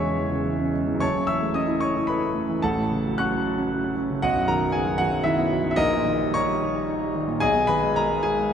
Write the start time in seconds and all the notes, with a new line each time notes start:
Already playing: E1 E2 C#3 E3 G#3 C#4 E4 C#5 E5 G#5 C#6
0.03 G#3
0.17 E3
0.32 C#3
0.46 E3
0.60 C#4
0.73 G#3
0.87 E3
0.94 F#2
1.00 F#1 C#5 A5 C#6
1.15 C#3
1.27 E3 E5 E6
1.42 A3
1.54 C#4 D#5 D#6
1.68 E4
1.80 A4 C#5 C#6
1.96 E4
2.07 A4 B4 B5
2.21 C#4
2.34 A3
2.49 E3
2.62 A1 A4 F#5 A5
2.78 A2
2.91 C#3
3.07 F#3
3.18 C#4 F#5 C#6 F#6
3.33 F#3
3.47 F#4
3.58 C#4
3.72 F#4
3.84 C#4
3.96 F#3
4.10 C#3
4.22 B1 F#4 D#5 F#5
4.36 F#2
4.48 D#3 A#4 A#5
4.63 F#3
4.72 B3 G#4 G#5
4.86 F#3
4.98 D#3 F#4 F#5
5.10 F#2
5.24 D#3 E4 E5
5.38 B3
5.52 F#3
5.64 D#3
5.71 E5
5.76 A#1 D#4 A#4 D#5
5.93 A#2
6.05 D#3
6.20 G3
6.34 D#4 C#5 A#5 C#6
6.48 G3
6.62 D#4
6.75 G3
6.89 D#4
7.02 G3
7.15 D#3
7.27 A#2
7.40 B1 G#4 D#5 G#5
7.56 B2
7.67 D#3 B4 B5
7.83 G#3
7.96 D#4 A#4 A#5
8.10 G#3
8.23 D#4 G#4 G#5
8.39 G#3